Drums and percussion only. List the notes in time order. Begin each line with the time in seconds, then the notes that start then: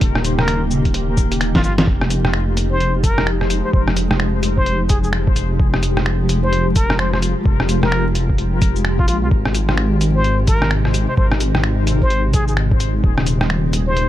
0.01 kick, closed hi-hat
0.15 cross-stick
0.25 closed hi-hat, cabasa
0.39 cross-stick
0.48 finger snap, closed hi-hat
0.71 cabasa
0.85 kick, closed hi-hat
0.94 closed hi-hat
1.17 kick, cabasa
1.32 closed hi-hat, cabasa
1.41 finger snap, closed hi-hat
1.55 kick, snare
1.64 cabasa
1.78 snare, closed hi-hat
1.87 kick
2.01 cross-stick
2.10 closed hi-hat, cabasa
2.25 cross-stick
2.34 finger snap
2.57 closed hi-hat, cabasa
2.80 closed hi-hat
3.04 kick, closed hi-hat, cabasa
3.18 cross-stick
3.27 finger snap
3.41 cross-stick
3.50 closed hi-hat, cabasa
3.73 kick
3.88 cross-stick
3.97 closed hi-hat, cabasa
4.11 cross-stick
4.20 finger snap
4.43 closed hi-hat, cabasa
4.57 kick
4.66 closed hi-hat
4.89 kick, closed hi-hat, cabasa
5.04 cabasa
5.13 finger snap
5.27 kick
5.36 closed hi-hat, cabasa
5.60 kick
5.74 cross-stick
5.83 closed hi-hat, cabasa
5.97 cross-stick
6.06 finger snap
6.29 closed hi-hat, cabasa
6.53 closed hi-hat
6.76 kick, closed hi-hat, cabasa
6.90 cross-stick
6.99 finger snap
7.13 cross-stick
7.22 closed hi-hat, cabasa
7.46 kick
7.60 cross-stick
7.69 closed hi-hat, cabasa
7.83 cross-stick
7.92 finger snap
8.15 closed hi-hat, cabasa
8.29 kick
8.38 closed hi-hat
8.62 kick, closed hi-hat, cabasa
8.76 cabasa
8.85 finger snap
8.99 kick
9.08 closed hi-hat, cabasa
9.31 kick
9.45 cross-stick
9.55 closed hi-hat, cabasa
9.69 cross-stick
9.78 finger snap
10.01 closed hi-hat, cabasa
10.24 closed hi-hat
10.47 kick, closed hi-hat, cabasa
10.62 cross-stick
10.71 finger snap
10.85 cross-stick
10.94 closed hi-hat, cabasa
11.17 kick
11.32 cross-stick
11.40 closed hi-hat, cabasa
11.55 cross-stick
11.64 finger snap
11.87 closed hi-hat, cabasa
12.02 kick
12.10 closed hi-hat
12.34 kick, closed hi-hat, cabasa
12.48 cabasa
12.57 finger snap
12.71 kick
12.80 closed hi-hat, cabasa
13.04 kick
13.18 cross-stick
13.26 closed hi-hat, cabasa
13.41 cross-stick
13.50 finger snap
13.73 closed hi-hat, cabasa
13.97 closed hi-hat